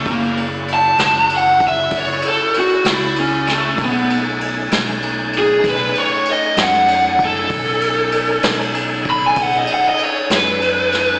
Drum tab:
RD |xxxxxxxxxxxx|xxxxxxxxxxxx|xxxxxxxxxxxx|
SD |---o-----o-o|---o-----o--|---o-----o-o|
BD |o----oo-----|o-----o----o|o----oo-----|